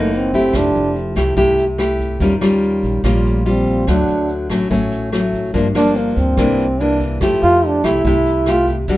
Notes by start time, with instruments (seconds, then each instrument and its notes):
Already playing: upright bass F#1, nylon-string guitar F#2 E3 A#3 D#4, trombone A3
0.13 trombone C4, closed hi-hat
0.33 nylon-string guitar A3 E4 G4, kick, closed hi-hat
0.53 upright bass F1, nylon-string guitar F3, trombone D4, kick, cross-stick, closed hi-hat
0.75 upright bass F1, closed hi-hat
0.95 closed hi-hat
1.16 upright bass C2, nylon-string guitar A3 E4 G4, kick, cross-stick, closed hi-hat
1.36 upright bass C2, nylon-string guitar C3 A3 E4 G4, kick, closed hi-hat
1.58 closed hi-hat
1.78 nylon-string guitar A3 E4 G4, cross-stick, closed hi-hat
1.99 kick, closed hi-hat
2.20 upright bass D#2, nylon-string guitar D#3 G3 C#4 F4, kick, closed hi-hat
2.41 upright bass D#2, nylon-string guitar G3 C#4 F4, cross-stick, closed hi-hat
2.62 closed hi-hat
2.83 upright bass A#1, kick, closed hi-hat
3.04 upright bass A#1, nylon-string guitar A#2 G3 C#4 F4, kick, cross-stick, closed hi-hat
3.26 trombone A3, closed hi-hat
3.46 nylon-string guitar G3 F4, trombone C4, closed hi-hat
3.67 kick, closed hi-hat
3.87 upright bass D2, nylon-string guitar D3 F#3 A3, trombone D4, kick, cross-stick, closed hi-hat
4.08 upright bass D2, closed hi-hat
4.29 closed hi-hat
4.50 upright bass A1, nylon-string guitar F#3 A3 C#4, kick, cross-stick, closed hi-hat
4.70 upright bass A1, nylon-string guitar A2 F#3 A3 C#4, kick, closed hi-hat
4.91 closed hi-hat
5.12 nylon-string guitar F#3 A3 C#4, cross-stick, closed hi-hat
5.33 kick, closed hi-hat
5.54 upright bass G1, nylon-string guitar G2 F3 A#3 D4, kick, closed hi-hat
5.75 upright bass G1, nylon-string guitar F3 A#3 D4, trombone D4, cross-stick, closed hi-hat
5.96 trombone A#3, closed hi-hat
6.16 upright bass D2, trombone C4, kick, closed hi-hat
6.37 upright bass C2, nylon-string guitar C3 E3 A#3 D4, kick, cross-stick, closed hi-hat
6.58 closed hi-hat
6.79 nylon-string guitar E3 A#3 D4, trombone D4, closed hi-hat
7.00 kick, closed hi-hat
7.21 upright bass F2, nylon-string guitar F3 A3 E4 G4, kick, cross-stick, closed hi-hat
7.42 upright bass F2, trombone F4, closed hi-hat
7.63 trombone D4, closed hi-hat
7.84 upright bass C2, nylon-string guitar A3 E4 G4, trombone E4, kick, cross-stick, closed hi-hat
8.05 upright bass C2, nylon-string guitar C3 A3 E4 G4, kick, closed hi-hat
8.26 closed hi-hat
8.46 nylon-string guitar A3 E4 G4, trombone F4, cross-stick, closed hi-hat
8.67 kick, closed hi-hat
8.88 upright bass E2, nylon-string guitar E3 G3 D4 F#4, kick, closed hi-hat